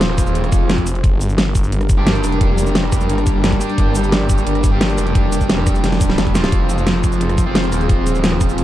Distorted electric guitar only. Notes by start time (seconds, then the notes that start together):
Already playing: F3 C4 F4
1.98 G3 D4 G4
3.61 G3 D4 G4
4.72 G3 D4 G4
6.35 F3 C4 F4
7.46 F3 C4 F4